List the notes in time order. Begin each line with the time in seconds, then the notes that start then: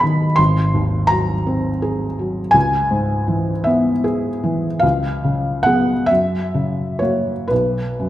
Already playing: B1 B2 D#3 B3 G#4 A#4 B4 D#5
0.00 D#3 B5
0.36 G#1 C6
0.74 D#2
1.07 F#3 A#5
1.47 C4
1.82 G#4
2.19 F#3
2.51 C#2 G#5
2.91 G#2
3.28 E3
3.64 B3 E5
4.04 G#4
4.44 E3
4.80 C#2 F5
5.24 C#3
5.63 B3 G#4 F#5
6.06 F#2 E5
6.54 C#3
6.99 A#3 F#4 C#5
7.48 B1 B4
8.00 F#2